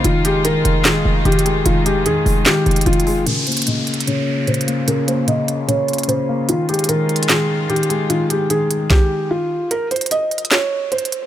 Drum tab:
HH |x-----------x-----------x-----------x-----------x-----------------------x---x---x---x-----------|x-----------x-----------x-----------o-----------x-----------x--x--x--x--x---x---x---o-----------|x-----------x--x--x--x--x-----------x---x---x---x-----------------------x---x---x---x-----------|x-----------x-----------x-----------x-----------x-----------x--x--x--x--x-----------------------|
CP |------------------------------------------------x-----------------------------------------------|------------------------------------------------x-----------------------------------------------|------------------------------------------------------------------------------------------------|------------------------------------------------------------------------------------------------|
SD |------------------------------------------------o-----------------------------------------------|------------------------------------------------o-----------------------------------------------|------------------------------------------------------------------------------------------------|------------------------------------------------------------------------------------------------|
BD |------------------------------------------------------------------------------------------------|------------------------------------------------------------------------------------------------|------------------------------------------------------------------------------------------------|------------------------------------------------------------------------------------------------|

HH |x-----------x--x--x--x--x-----------x---x---x---x-----------------------x---x---x---x-----------|x-----------x-----------x-----------x-----------------------------------------------------------|x-----------x--x--x--x--x-----------x---x---x---x-----------------------x---x---x---x-----------|
CP |------------------------------------------------x-----------------------------------------------|------------------------------------------------------------------------------------------------|------------------------------------------------x-----------------------------------------------|
SD |------------------------------------------------o-----------------------------------------------|------------------------------------------------o-----------------------------------------------|------------------------------------------------o-----------------------------------------------|
BD |------------------------------------------------------------------------------------------------|------------------------------------------------o-----------------------------------------------|------------------------------------------------------------------------------------------------|